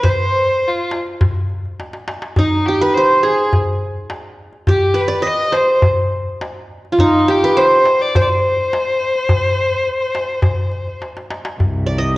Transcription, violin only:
0, 0, Header, 1, 2, 480
1, 0, Start_track
1, 0, Tempo, 577478
1, 50, Time_signature, 4, 2, 24, 8
1, 10121, End_track
2, 0, Start_track
2, 0, Title_t, "Violin"
2, 0, Program_c, 0, 40
2, 0, Note_on_c, 0, 71, 71
2, 77, Note_on_c, 0, 72, 80
2, 89, Note_off_c, 0, 71, 0
2, 559, Note_on_c, 0, 65, 65
2, 572, Note_off_c, 0, 72, 0
2, 785, Note_off_c, 0, 65, 0
2, 1976, Note_on_c, 0, 63, 69
2, 2209, Note_on_c, 0, 67, 68
2, 2221, Note_off_c, 0, 63, 0
2, 2341, Note_on_c, 0, 71, 80
2, 2353, Note_off_c, 0, 67, 0
2, 2440, Note_on_c, 0, 72, 76
2, 2453, Note_off_c, 0, 71, 0
2, 2686, Note_on_c, 0, 68, 68
2, 2698, Note_off_c, 0, 72, 0
2, 2928, Note_off_c, 0, 68, 0
2, 3909, Note_on_c, 0, 67, 67
2, 4157, Note_on_c, 0, 71, 70
2, 4169, Note_off_c, 0, 67, 0
2, 4382, Note_on_c, 0, 75, 79
2, 4394, Note_off_c, 0, 71, 0
2, 4626, Note_on_c, 0, 72, 70
2, 4639, Note_off_c, 0, 75, 0
2, 4859, Note_off_c, 0, 72, 0
2, 5821, Note_on_c, 0, 63, 78
2, 6072, Note_on_c, 0, 67, 74
2, 6084, Note_off_c, 0, 63, 0
2, 6304, Note_on_c, 0, 72, 77
2, 6317, Note_off_c, 0, 67, 0
2, 6665, Note_on_c, 0, 74, 70
2, 6677, Note_off_c, 0, 72, 0
2, 6782, Note_on_c, 0, 72, 74
2, 6794, Note_off_c, 0, 74, 0
2, 6832, Note_on_c, 0, 74, 60
2, 6844, Note_off_c, 0, 72, 0
2, 6892, Note_on_c, 0, 72, 80
2, 6905, Note_off_c, 0, 74, 0
2, 9171, Note_off_c, 0, 72, 0
2, 10121, End_track
0, 0, End_of_file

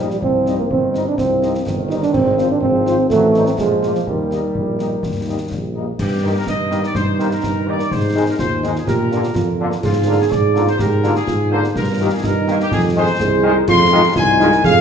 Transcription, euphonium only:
0, 0, Header, 1, 2, 480
1, 0, Start_track
1, 0, Key_signature, -3, "major"
1, 0, Tempo, 480769
1, 224, Time_signature, 2, 2, 24, 8
1, 14785, End_track
2, 0, Start_track
2, 0, Title_t, "Euphonium"
2, 0, Program_c, 0, 58
2, 120, Note_on_c, 0, 55, 65
2, 171, Note_off_c, 0, 55, 0
2, 231, Note_on_c, 0, 60, 78
2, 562, Note_off_c, 0, 60, 0
2, 590, Note_on_c, 0, 58, 71
2, 643, Note_off_c, 0, 58, 0
2, 712, Note_on_c, 0, 60, 77
2, 1043, Note_off_c, 0, 60, 0
2, 1074, Note_on_c, 0, 62, 75
2, 1181, Note_off_c, 0, 62, 0
2, 1187, Note_on_c, 0, 60, 79
2, 1632, Note_off_c, 0, 60, 0
2, 1888, Note_on_c, 0, 63, 83
2, 1946, Note_off_c, 0, 63, 0
2, 2017, Note_on_c, 0, 62, 87
2, 2124, Note_off_c, 0, 62, 0
2, 2130, Note_on_c, 0, 60, 85
2, 2472, Note_off_c, 0, 60, 0
2, 2504, Note_on_c, 0, 62, 80
2, 2595, Note_off_c, 0, 62, 0
2, 2601, Note_on_c, 0, 60, 89
2, 3058, Note_off_c, 0, 60, 0
2, 3087, Note_on_c, 0, 57, 89
2, 3430, Note_off_c, 0, 57, 0
2, 3463, Note_on_c, 0, 60, 76
2, 3518, Note_off_c, 0, 60, 0
2, 3579, Note_on_c, 0, 56, 79
2, 3916, Note_off_c, 0, 56, 0
2, 3941, Note_on_c, 0, 53, 61
2, 3996, Note_off_c, 0, 53, 0
2, 4058, Note_on_c, 0, 51, 68
2, 5461, Note_off_c, 0, 51, 0
2, 6452, Note_on_c, 0, 63, 76
2, 8335, Note_off_c, 0, 63, 0
2, 8373, Note_on_c, 0, 65, 70
2, 8823, Note_off_c, 0, 65, 0
2, 8857, Note_on_c, 0, 67, 73
2, 9304, Note_off_c, 0, 67, 0
2, 9337, Note_on_c, 0, 65, 77
2, 9785, Note_off_c, 0, 65, 0
2, 9817, Note_on_c, 0, 68, 83
2, 10738, Note_off_c, 0, 68, 0
2, 10776, Note_on_c, 0, 67, 77
2, 11223, Note_off_c, 0, 67, 0
2, 11254, Note_on_c, 0, 65, 82
2, 12176, Note_off_c, 0, 65, 0
2, 12218, Note_on_c, 0, 63, 84
2, 12858, Note_off_c, 0, 63, 0
2, 13178, Note_on_c, 0, 68, 91
2, 13625, Note_off_c, 0, 68, 0
2, 13658, Note_on_c, 0, 65, 91
2, 14139, Note_on_c, 0, 63, 82
2, 14154, Note_off_c, 0, 65, 0
2, 14613, Note_off_c, 0, 63, 0
2, 14619, Note_on_c, 0, 68, 98
2, 14785, Note_off_c, 0, 68, 0
2, 14785, End_track
0, 0, End_of_file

